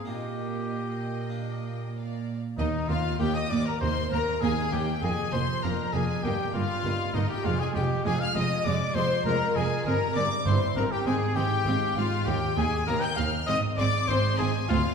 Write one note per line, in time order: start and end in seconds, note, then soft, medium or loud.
0.05 2.34 A#2 soft
0.05 1.28 A#3 soft
0.05 2.34 A#3 soft
0.05 1.29 D#4 soft
0.05 1.92 G4 medium
0.05 1.92 G5 medium
0.10 1.97 D#5 medium
1.30 2.53 A#3 soft
1.30 2.54 D4 soft
1.96 2.38 D5 soft
1.96 2.38 F5 soft
2.58 2.86 D#2 medium
2.58 2.66 D#2 medium
2.58 2.66 A#3 medium
2.58 2.90 D#4 medium
2.58 2.87 D#4 medium
2.58 2.67 D#5 loud
2.88 3.17 D#2 medium
2.88 2.97 D#2 medium
2.88 2.97 A#3 medium
2.88 3.20 F4 medium
2.88 3.19 F4 medium
2.88 3.19 F5 loud
3.19 3.47 D#2 medium
3.19 3.28 D#2 medium
3.19 3.64 A#3 medium
3.19 3.28 A#3 medium
3.19 3.65 D#4 medium
3.19 3.35 G4 medium
3.19 3.36 G4 medium
3.19 3.35 G5 loud
3.34 3.51 D#5 medium
3.34 3.50 D#5 medium
3.34 3.51 D#6 loud
3.50 3.58 D#2 medium
3.50 3.59 D#2 medium
3.50 3.78 D#2 medium
3.50 3.59 A#3 medium
3.50 3.67 D5 medium
3.50 3.66 D5 medium
3.50 3.66 D6 loud
3.66 3.80 A#4 medium
3.66 3.72 A#4 medium
3.66 3.82 A#5 medium
3.81 4.09 D#2 medium
3.81 3.89 D#2 medium
3.81 3.89 A#3 medium
3.81 3.95 C5 medium
3.81 4.11 C5 medium
3.81 4.11 C6 loud
4.11 4.19 D#2 medium
4.11 4.20 D#2 medium
4.11 4.39 D#2 medium
4.11 4.21 A#3 medium
4.11 4.43 A#4 medium
4.11 4.41 A#5 loud
4.41 4.50 D#2 medium
4.41 4.70 D#2 medium
4.41 4.50 A#3 medium
4.41 4.86 A#3 medium
4.41 4.87 D#4 medium
4.41 4.72 G#4 medium
4.41 4.73 G#4 medium
4.41 4.72 G#5 loud
4.72 4.80 D#2 medium
4.72 5.00 D#2 medium
4.72 4.80 A#3 medium
4.72 4.86 G4 medium
4.72 5.03 G4 medium
4.72 5.03 G5 loud
5.02 5.10 F1 medium
5.02 5.11 F2 medium
5.02 5.31 F2 medium
5.02 5.11 A#3 medium
5.02 5.32 G#4 medium
5.02 5.11 G#4 medium
5.02 5.33 G#5 loud
5.33 5.41 F1 medium
5.33 5.41 F2 medium
5.33 5.61 F2 medium
5.33 5.41 A#3 medium
5.33 5.65 C5 medium
5.33 5.41 C5 medium
5.33 5.64 C6 loud
5.63 5.72 F1 medium
5.63 5.91 F2 medium
5.63 5.73 F2 medium
5.63 5.71 A#3 medium
5.63 6.08 A#3 medium
5.63 6.08 D4 medium
5.63 5.94 A#4 medium
5.63 5.72 A#4 medium
5.63 5.94 A#5 loud
5.93 6.02 F1 medium
5.93 6.22 F2 medium
5.93 6.03 F2 medium
5.93 6.02 A#3 medium
5.93 6.25 G#4 medium
5.93 6.02 G#4 medium
5.93 6.24 G#5 loud
6.23 6.32 G1 medium
6.23 6.33 G2 medium
6.23 6.52 G2 medium
6.23 6.32 A#3 medium
6.23 6.53 G4 medium
6.23 6.34 G4 medium
6.23 6.55 G5 loud
6.54 6.62 G1 medium
6.54 6.63 G2 medium
6.54 6.82 G2 medium
6.54 6.62 A#3 medium
6.54 7.16 F4 medium
6.54 7.14 F4 medium
6.54 7.15 F5 loud
6.84 6.93 G1 medium
6.84 6.93 G2 medium
6.84 7.12 G2 medium
6.84 6.92 A#3 medium
6.84 7.29 A#3 medium
6.84 7.29 D#4 medium
7.14 7.23 G1 medium
7.14 7.23 G2 medium
7.14 7.43 G2 medium
7.14 7.22 A#3 medium
7.14 7.29 D#4 medium
7.14 7.30 D#4 medium
7.14 7.30 D#5 medium
7.29 7.47 G4 medium
7.29 7.45 G4 medium
7.29 7.45 G5 medium
7.44 7.53 F1 medium
7.44 7.53 F2 medium
7.44 7.73 F2 medium
7.44 7.52 G#3 medium
7.44 7.60 F4 medium
7.44 7.61 F4 loud
7.44 7.60 F5 loud
7.60 7.76 G#4 medium
7.60 7.75 G#4 medium
7.60 7.67 G#5 medium
7.74 7.83 F1 medium
7.74 7.83 F2 medium
7.74 8.03 F2 medium
7.74 7.82 G#3 medium
7.74 8.05 G4 medium
7.74 7.84 G5 loud
8.04 8.14 F1 medium
8.04 8.33 F2 medium
8.04 8.14 F2 medium
8.04 8.12 G#3 medium
8.04 8.49 G#3 medium
8.04 8.49 C4 medium
8.04 8.49 F4 medium
8.04 8.22 G#4 medium
8.04 8.21 G#4 loud
8.04 8.21 G#5 loud
8.20 8.34 F5 medium
8.20 8.27 F5 medium
8.20 8.36 F6 loud
8.35 8.44 F1 medium
8.35 8.63 F2 medium
8.35 8.44 F2 medium
8.35 8.43 G#3 medium
8.35 8.67 D#5 medium
8.35 8.66 D#5 loud
8.35 8.66 D#6 loud
8.65 8.73 F1 medium
8.65 8.93 F2 medium
8.65 8.74 F2 medium
8.65 8.73 G#3 medium
8.65 9.25 G#3 medium
8.65 8.96 D5 loud
8.65 8.74 D5 medium
8.65 8.96 D6 loud
8.95 9.03 F1 medium
8.95 9.23 F2 medium
8.95 9.04 F2 medium
8.95 9.04 G#3 medium
8.95 9.25 C5 loud
8.95 9.26 C5 loud
8.95 9.25 C6 loud
9.25 9.33 F1 medium
9.25 9.53 F2 medium
9.25 9.34 F2 medium
9.25 9.34 G#3 medium
9.25 9.69 G#3 medium
9.25 9.70 C4 medium
9.25 9.70 F4 medium
9.25 9.57 A#4 loud
9.25 9.56 A#4 loud
9.25 9.55 A#5 loud
9.55 9.63 F1 medium
9.55 9.83 F2 medium
9.55 9.65 F2 medium
9.55 9.64 G#3 medium
9.55 9.86 G#4 medium
9.55 9.85 G#5 loud
9.85 9.93 G1 medium
9.85 10.13 G2 medium
9.85 9.95 G2 medium
9.85 9.94 C4 medium
9.85 10.00 A#4 loud
9.85 10.17 A#4 loud
9.85 10.15 A#5 loud
10.15 10.23 G1 medium
10.15 10.43 G2 medium
10.15 10.25 G2 medium
10.15 10.24 C4 medium
10.15 10.29 D5 medium
10.15 10.24 D5 loud
10.15 10.46 D6 loud
10.46 10.54 G1 medium
10.46 10.73 G2 medium
10.46 10.55 G2 medium
10.46 10.89 C4 medium
10.46 10.55 C4 medium
10.46 10.90 E4 medium
10.46 10.59 C5 medium
10.46 10.76 C5 medium
10.46 10.77 C6 loud
10.76 10.84 G1 medium
10.76 11.03 G2 medium
10.76 10.85 G2 medium
10.76 10.84 C4 medium
10.76 10.82 A#4 medium
10.76 10.93 A#4 medium
10.76 10.82 A#5 loud
10.92 11.06 G4 medium
10.92 11.08 G4 medium
10.92 11.07 G5 medium
11.06 11.14 G#1 medium
11.06 11.33 G#2 medium
11.06 11.15 G#2 medium
11.06 11.14 C4 medium
11.06 11.36 G#4 loud
11.06 11.37 G#4 loud
11.06 11.14 G#5 loud
11.36 11.44 G#1 medium
11.36 11.63 G#2 medium
11.36 11.46 G#2 medium
11.36 11.45 C4 medium
11.36 11.96 G4 loud
11.36 11.95 G5 loud
11.65 11.73 G#1 medium
11.65 11.93 G#2 medium
11.65 11.75 G#2 medium
11.65 11.74 C4 medium
11.65 12.10 C4 medium
11.65 12.10 F4 medium
11.96 12.04 G#1 medium
11.96 12.23 G#2 medium
11.96 12.05 G#2 medium
11.96 12.05 C4 medium
11.96 12.26 F4 loud
11.96 12.27 F4 medium
11.96 12.27 F5 loud
12.26 12.34 D#2 medium
12.26 12.54 D#2 medium
12.26 12.35 D#2 medium
12.26 12.34 A#3 medium
12.26 12.56 G4 loud
12.26 12.57 G4 medium
12.26 12.57 G5 loud
12.56 12.64 D#2 medium
12.56 12.65 D#2 medium
12.56 12.85 D#2 medium
12.56 12.65 A#3 medium
12.56 12.86 G#4 loud
12.56 12.66 G#4 loud
12.56 12.87 G#5 loud
12.87 13.15 D#2 medium
12.87 12.96 D#2 medium
12.87 12.95 A#3 medium
12.87 13.31 A#3 medium
12.87 13.32 D#4 medium
12.87 13.03 A#4 loud
12.87 13.03 A#5 loud
13.01 13.16 G5 medium
13.01 13.09 G5 loud
13.01 13.18 G6 loud
13.16 13.26 D#2 medium
13.16 13.45 D#2 medium
13.16 13.26 D#2 medium
13.16 13.25 A#3 medium
13.16 13.30 F5 loud
13.16 13.25 F5 loud
13.16 13.48 F6 loud
13.46 13.56 G#1 medium
13.46 13.76 G#2 medium
13.46 13.57 G#2 medium
13.46 13.56 C4 medium
13.46 13.60 D#5 loud
13.46 13.56 D#5 loud
13.46 13.56 D#6 loud
13.78 13.86 G#1 medium
13.78 14.05 G#2 medium
13.78 13.87 G#2 medium
13.78 13.86 C4 medium
13.78 14.10 D5 loud
13.78 14.08 D5 loud
13.78 14.08 D6 loud
14.08 14.17 G#1 loud
14.08 14.36 G#2 medium
14.08 14.17 G#2 medium
14.08 14.52 C4 medium
14.08 14.17 C4 medium
14.08 14.52 D#4 medium
14.08 14.38 C5 loud
14.08 14.17 C5 loud
14.08 14.39 C6 loud
14.38 14.47 G#1 medium
14.38 14.66 G#2 medium
14.38 14.48 G#2 medium
14.38 14.47 C4 medium
14.38 14.52 G#4 loud
14.38 14.47 G#4 loud
14.38 14.69 G#5 loud
14.69 14.77 D2 loud
14.69 14.94 D2 medium
14.69 14.78 D2 medium
14.69 14.78 C4 medium
14.69 14.83 F4 loud
14.69 14.94 F4 loud
14.69 14.94 F5 loud